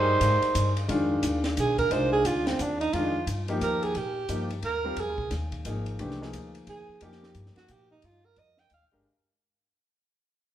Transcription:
0.00 0.20 G2 medium
0.00 0.73 D#4 medium
0.00 0.82 G4 soft
0.00 0.81 G#4 medium
0.00 0.82 A#4 medium
0.00 0.74 C5 medium
0.00 0.81 D5 medium
0.21 0.41 G#2 medium
0.21 hi-hat pedal soft
0.21 ride medium
0.42 muted upright bass stroke soft
0.42 ride soft
0.55 0.88 G2 medium
0.55 hi-hat pedal medium
0.55 ride medium
0.77 ride soft
0.88 1.22 F2 medium
0.88 1.83 D#3 medium
0.88 1.83 G#3 medium
0.88 1.83 D4 medium
0.88 1.84 F4 medium
0.88 ride medium
1.23 1.56 D#2 medium
1.23 hi-hat pedal medium
1.23 ride medium
1.44 snare soft
1.44 ride soft
1.57 1.90 B1 medium
1.57 1.78 G#4 medium
1.57 hi-hat pedal soft
1.57 ride medium
1.78 1.93 A#4 medium
1.78 kick soft
1.78 ride soft
1.90 2.24 C2 medium
1.90 2.86 G#3 medium
1.90 2.86 D4 medium
1.90 2.85 D#4 medium
1.90 2.86 F4 medium
1.90 2.12 C5 medium
1.90 ride medium
2.12 2.28 G#4 medium
2.25 2.58 D2 medium
2.25 2.48 F4 medium
2.25 hi-hat pedal medium
2.25 ride medium
2.47 2.62 C4 medium
2.47 snare medium
2.47 ride soft
2.59 2.92 D#2 medium
2.59 2.80 D4 medium
2.59 hi-hat pedal medium
2.59 ride medium
2.80 2.95 D#4 medium
2.80 ride soft
2.93 3.26 F2 medium
2.93 3.13 D#3 medium
2.93 3.13 G#3 medium
2.93 3.13 D4 medium
2.93 3.27 F4 medium
2.93 3.13 F4 medium
2.93 ride medium
3.27 3.60 G2 medium
3.27 hi-hat pedal soft
3.27 ride medium
3.48 3.93 F3 medium
3.48 3.93 A#3 medium
3.48 3.93 D#4 medium
3.48 3.93 G4 medium
3.48 ride soft
3.61 3.94 D#2 medium
3.61 3.84 A#4 medium
3.61 hi-hat pedal medium
3.61 ride medium
3.83 3.98 G#4 medium
3.83 ride soft
3.95 4.28 A#2 medium
3.95 4.51 G4 medium
3.95 ride medium
4.29 4.62 G2 medium
4.29 4.48 F3 medium
4.29 4.48 A#3 medium
4.29 4.48 D#4 medium
4.29 4.49 G4 medium
4.29 hi-hat pedal medium
4.29 ride medium
4.50 ride soft
4.63 4.96 D#2 medium
4.63 5.02 A#4 medium
4.63 ride medium
4.84 4.96 G3 medium
4.84 4.96 C4 medium
4.84 4.96 F4 medium
4.84 4.97 A#4 medium
4.97 5.08 F2 medium
4.97 5.33 G#4 medium
4.97 ride medium
5.08 5.19 D#2 soft
5.18 5.30 C2 medium
5.18 kick medium
5.31 5.64 D#2 medium
5.31 snare soft
5.31 hi-hat pedal soft
5.31 ride medium
5.52 kick soft
5.52 ride soft
5.65 5.98 G#1 medium
5.65 6.16 F3 medium
5.65 6.16 A#3 medium
5.65 6.17 D#4 medium
5.65 6.17 G#4 medium
5.65 hi-hat pedal medium
5.65 ride medium
5.86 ride soft
5.99 6.32 C2 medium
5.99 6.18 E3 medium
5.99 6.18 A3 medium
5.99 6.19 D4 medium
5.99 6.19 G4 medium
5.99 ride medium
6.11 snare soft
6.21 6.94 F3 medium
6.21 6.94 A#3 medium
6.21 6.94 D#4 medium
6.21 6.94 G#4 medium
6.21 snare soft
6.33 6.66 D2 medium
6.33 hi-hat pedal medium
6.33 ride medium
6.55 ride soft
6.67 6.87 D#2 medium
6.67 7.06 G#4 medium
6.67 ride medium
6.89 muted upright bass stroke soft
7.01 7.34 F2 medium
7.01 7.95 F3 medium
7.01 7.96 A#3 medium
7.01 7.96 D#4 medium
7.01 7.96 G4 medium
7.01 7.36 G4 medium
7.01 ride medium
7.12 snare soft
7.23 snare soft
7.35 7.55 G2 medium
7.35 hi-hat pedal soft
7.35 ride medium
7.46 snare soft
7.56 7.73 F#4 medium
7.56 muted upright bass stroke soft
7.56 snare soft
7.56 ride soft
7.68 8.02 A#2 medium
7.68 7.91 G4 medium
7.68 hi-hat pedal medium
7.68 ride medium
7.91 8.07 D#4 medium
8.02 8.36 G2 medium
8.02 8.27 F4 medium
8.02 ride medium
8.25 8.40 A#4 medium
8.36 8.70 F2 medium
8.36 8.60 D#5 medium
8.36 ride medium
8.57 8.71 G5 loud
8.57 snare soft
8.70 8.84 D#2 medium
8.70 8.85 F5 medium
8.70 hi-hat pedal medium
8.70 ride medium
8.82 8.93 A#1 soft
8.92 9.04 G1 medium
8.92 9.04 G#3 medium
8.92 9.05 D4 medium
8.92 9.05 G4 medium
8.92 9.05 A#4 medium

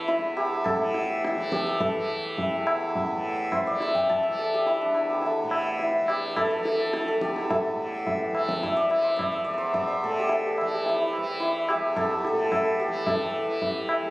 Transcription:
0.00 0.17 E2 medium
0.00 0.78 A2 medium
0.00 1.36 E3 medium
0.00 1.09 C4 soft
0.00 0.87 D4 soft
0.00 0.33 G4 medium
0.00 0.64 A4 medium
0.08 3.56 E4 medium
0.08 tabla tin medium
0.18 2.53 E2 medium
0.37 1.52 G4 medium
0.37 tabla na medium
0.64 1.80 A4 medium
0.64 tabla na medium
0.64 tabla ge medium
0.78 3.11 A2 medium
0.94 tabla te medium
1.25 tabla te medium
1.36 1.95 E3 medium
1.36 tabla te soft
1.52 4.54 G4 medium
1.52 tabla ke medium
1.67 tabla te medium
1.80 4.38 A4 medium
1.80 tabla tin medium
1.80 tabla ge medium
1.95 3.70 E3 medium
2.38 tabla tin medium
2.38 tabla ge medium
2.53 4.86 E2 medium
2.67 tabla na medium
2.95 tabla tin medium
2.95 tabla ge medium
3.11 5.43 A2 medium
3.52 6.15 C5 medium
3.52 tabla na medium
3.52 tabla ge medium
3.67 4.28 E3 medium
3.67 6.12 D5 medium
3.80 4.23 E5 medium
3.80 tabla te medium
3.95 6.01 G5 medium
3.95 tabla ge soft
4.09 6.03 A5 loud
4.09 tabla tin medium
4.09 tabla ge medium
4.23 6.53 E5 medium
4.28 6.01 E3 medium
4.39 5.26 A4 medium
4.54 5.10 G4 medium
4.66 4.95 E4 medium
4.66 tabla tin medium
4.81 8.52 D4 medium
4.86 7.16 E2 medium
4.95 5.82 E4 medium
4.95 tabla na medium
5.10 6.09 G4 medium
5.22 tabla tin medium
5.26 6.36 A4 medium
5.43 7.74 A2 medium
5.51 tabla na medium
5.79 9.31 E4 medium
5.79 tabla tin medium
6.01 6.59 E3 medium
6.08 7.21 G4 medium
6.08 tabla na medium
6.36 6.45 A4 loud
6.36 tabla na medium
6.36 tabla ge medium
6.45 6.50 A4 medium
6.50 6.56 A4 medium
6.57 8.32 E3 medium
6.57 6.65 A4 medium
6.65 6.71 A4 medium
6.65 tabla te medium
6.72 6.80 A4 medium
6.80 6.86 A4 medium
6.87 6.93 A4 medium
6.93 7.00 A4 medium
6.93 tabla te medium
7.01 7.07 A4 medium
7.08 7.50 A4 medium
7.08 tabla te medium
7.17 9.47 E2 medium
7.21 10.19 G4 medium
7.21 tabla ke medium
7.36 tabla te medium
7.50 10.03 A4 medium
7.50 tabla tin loud
7.50 tabla ge medium
7.74 10.03 A2 medium
8.07 tabla tin medium
8.07 tabla ge medium
8.32 8.89 E3 medium
8.32 tabla na medium
8.49 tabla ke medium
8.63 8.89 E5 medium
8.63 tabla tin medium
8.63 tabla ge medium
8.77 9.16 D5 medium
8.89 10.61 E3 medium
8.89 9.12 E5 medium
8.89 tabla na medium
9.02 9.57 C5 medium
9.12 9.32 E5 medium
9.16 9.44 D5 medium
9.16 tabla na medium
9.16 tabla ge medium
9.32 11.62 E5 medium
9.44 11.74 E2 medium
9.44 9.53 D5 medium
9.53 9.73 D5 medium
9.58 9.87 C5 medium
9.74 12.18 D5 medium
9.74 tabla tin medium
9.74 tabla ge medium
9.88 12.50 C5 medium
10.03 12.32 A2 medium
10.03 10.32 A4 medium
10.20 10.46 G4 medium
10.29 10.61 A4 medium
10.29 tabla tin medium
10.46 10.74 G4 medium
10.58 11.17 E3 medium
10.58 11.96 A4 medium
10.58 tabla na medium
10.74 11.69 G4 medium
10.86 11.01 E4 medium
10.86 tabla tin medium
11.01 11.40 E4 medium
11.13 tabla na medium
11.17 12.88 E3 medium
11.40 14.10 E4 medium
11.40 tabla tin medium
11.69 12.81 G4 medium
11.69 tabla na medium
11.74 14.01 E2 medium
11.96 12.04 A4 loud
11.96 tabla na medium
11.96 tabla ge medium
12.04 12.10 A4 medium
12.10 12.18 A4 medium
12.19 12.26 A4 medium
12.25 12.32 A4 medium
12.25 tabla te medium
12.32 14.10 A2 medium
12.32 12.38 A4 medium
12.39 12.44 A4 medium
12.44 12.52 A4 medium
12.52 12.58 A4 medium
12.52 tabla na medium
12.52 tabla ge medium
12.58 12.65 A4 medium
12.65 13.08 A4 medium
12.80 14.10 G4 medium
12.80 tabla te medium
12.88 13.45 E3 medium
13.07 14.10 A4 medium
13.07 tabla tin loud
13.07 tabla ge medium
13.45 14.10 E3 medium
13.62 tabla tin medium
13.62 tabla ge medium
13.89 tabla na medium
14.02 14.10 E2 medium

